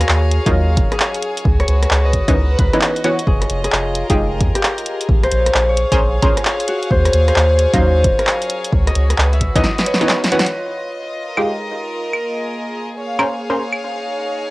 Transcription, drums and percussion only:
0.01 cross-stick, closed hi-hat
0.09 clap
0.31 closed hi-hat
0.46 kick, closed hi-hat
0.77 kick, closed hi-hat
0.92 cross-stick, closed hi-hat
1.00 clap
1.14 closed hi-hat
1.23 closed hi-hat
1.37 closed hi-hat
1.45 kick
1.60 cross-stick, closed hi-hat
1.68 closed hi-hat
1.83 cross-stick, closed hi-hat
1.91 clap
2.13 kick, closed hi-hat
2.28 kick, closed hi-hat
2.59 kick, closed hi-hat
2.73 cross-stick, closed hi-hat
2.81 clap
2.96 closed hi-hat
3.04 closed hi-hat
3.19 closed hi-hat
3.27 kick
3.42 cross-stick, closed hi-hat
3.50 closed hi-hat
3.64 cross-stick, closed hi-hat
3.72 clap
3.95 closed hi-hat
4.10 kick, closed hi-hat
4.41 kick, closed hi-hat
4.55 cross-stick, closed hi-hat
4.63 clap
4.78 closed hi-hat
4.86 closed hi-hat
5.01 closed hi-hat
5.09 kick
5.24 cross-stick, closed hi-hat
5.32 closed hi-hat
5.46 cross-stick, closed hi-hat
5.54 clap
5.77 closed hi-hat
5.92 kick, closed hi-hat
6.22 kick, closed hi-hat
6.37 cross-stick, closed hi-hat
6.45 clap
6.60 closed hi-hat
6.68 closed hi-hat
6.83 closed hi-hat
6.91 kick
7.05 cross-stick, closed hi-hat
7.13 closed hi-hat
7.28 cross-stick, closed hi-hat
7.36 clap
7.59 closed hi-hat
7.74 kick, closed hi-hat
8.04 kick, closed hi-hat
8.19 cross-stick, closed hi-hat
8.27 clap
8.42 closed hi-hat
8.50 closed hi-hat
8.64 closed hi-hat
8.72 kick
8.87 cross-stick, closed hi-hat
8.95 closed hi-hat
9.10 cross-stick, closed hi-hat
9.18 clap
9.33 closed hi-hat
9.41 kick, closed hi-hat
9.55 kick, closed hi-hat
9.63 snare
9.78 snare, closed hi-hat
9.86 closed hi-hat
9.94 snare
10.01 closed hi-hat
10.09 snare, clap
10.24 snare, closed hi-hat
10.32 closed hi-hat
10.39 snare
10.46 closed hi-hat
11.37 claves
12.13 claves
13.19 claves
13.73 claves

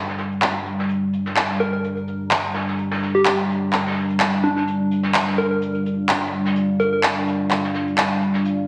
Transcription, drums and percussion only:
0.08 snare
0.18 snare, closed hi-hat
0.31 closed hi-hat
0.42 clap
0.54 closed hi-hat
0.66 closed hi-hat
0.79 snare
0.89 closed hi-hat
1.13 closed hi-hat
1.26 snare
1.36 clap
1.49 snare
1.60 closed hi-hat
1.84 closed hi-hat
1.97 closed hi-hat
2.08 closed hi-hat
2.31 clap
2.54 snare, open hi-hat
2.68 snare
2.79 closed hi-hat
2.91 snare, open hi-hat
3.02 snare
3.16 closed hi-hat
3.25 clap
3.50 closed hi-hat
3.73 snare, clap, open hi-hat
3.79 snare, open hi-hat
3.85 snare, open hi-hat
3.91 snare, open hi-hat
4.10 closed hi-hat
4.20 clap
4.33 closed hi-hat
4.44 closed hi-hat
4.57 snare
4.67 closed hi-hat
4.91 closed hi-hat
5.03 snare
5.14 clap, open hi-hat
5.27 snare
5.38 closed hi-hat
5.62 closed hi-hat
5.74 closed hi-hat
5.86 closed hi-hat
6.09 clap
6.32 closed hi-hat
6.45 snare
6.55 closed hi-hat
6.80 closed hi-hat
7.03 clap
7.27 closed hi-hat
7.51 clap, closed hi-hat
7.64 snare
7.74 snare, closed hi-hat
7.87 closed hi-hat
7.98 clap, closed hi-hat
8.10 closed hi-hat
8.21 closed hi-hat
8.34 snare
8.45 closed hi-hat

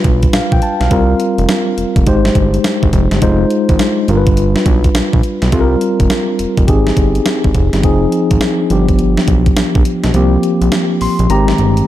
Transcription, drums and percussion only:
0.04 kick, closed hi-hat
0.23 kick, closed hi-hat
0.33 snare, closed hi-hat
0.52 kick
0.62 closed hi-hat
0.81 snare, closed hi-hat
0.91 kick, closed hi-hat
1.20 closed hi-hat
1.38 closed hi-hat
1.49 snare, closed hi-hat
1.78 closed hi-hat
1.96 kick, closed hi-hat
2.06 kick, closed hi-hat
2.25 snare
2.35 kick, closed hi-hat
2.54 closed hi-hat
2.64 snare, closed hi-hat
2.83 kick
2.93 kick, closed hi-hat
3.11 snare, closed hi-hat
3.22 kick, closed hi-hat
3.50 closed hi-hat
3.69 kick, closed hi-hat
3.79 snare, closed hi-hat
4.08 closed hi-hat
4.27 kick, closed hi-hat
4.37 closed hi-hat
4.56 snare
4.66 kick, closed hi-hat
4.84 kick, closed hi-hat
4.95 snare, closed hi-hat
5.13 kick
5.23 closed hi-hat
5.42 snare, closed hi-hat
5.52 kick, closed hi-hat
5.81 closed hi-hat
6.00 kick, closed hi-hat
6.10 snare, closed hi-hat
6.39 closed hi-hat
6.57 kick, closed hi-hat
6.68 kick, closed hi-hat
6.87 snare
6.97 kick, closed hi-hat
7.15 closed hi-hat
7.26 snare, closed hi-hat
7.44 kick
7.54 kick, closed hi-hat
7.73 snare, closed hi-hat
7.83 kick, closed hi-hat
8.12 closed hi-hat
8.31 kick, closed hi-hat
8.41 snare, closed hi-hat
8.70 closed hi-hat
8.89 kick, closed hi-hat
8.99 closed hi-hat
9.17 snare
9.28 kick, closed hi-hat
9.46 kick, closed hi-hat
9.57 snare, closed hi-hat
9.75 kick
9.85 closed hi-hat
10.04 snare, closed hi-hat
10.14 closed hi-hat
10.43 closed hi-hat
10.62 closed hi-hat
10.72 snare, closed hi-hat
11.01 open hi-hat
11.19 closed hi-hat
11.30 closed hi-hat
11.48 snare
11.58 closed hi-hat
11.77 closed hi-hat

